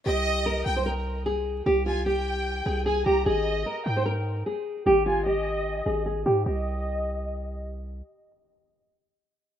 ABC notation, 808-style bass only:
X:1
M:4/4
L:1/8
Q:1/4=150
K:Cm
V:1 name="808-style bass" clef=bass
C,,3 C,,4- C,, | C,,4- C,, C,,2 C,, | A,,,2 z A,,3 z2 | A,,,4- A,,, A,,,2 A,, |
C,,8 | z8 |]